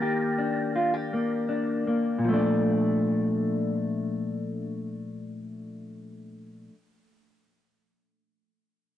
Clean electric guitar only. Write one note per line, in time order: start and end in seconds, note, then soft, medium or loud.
0.00 2.23 D#3 medium
0.00 1.13 A#3 medium
0.00 0.38 D4 medium
0.00 0.75 G4 medium
0.38 1.48 D4 soft
0.76 0.94 F4 medium
0.94 2.31 G4 soft
1.13 1.87 A#3 medium
1.49 2.33 D4 soft
1.87 2.28 A#3 soft
2.18 6.67 A#2 medium
2.24 6.70 F3 medium
2.29 6.72 A3 medium
2.34 6.75 D4 medium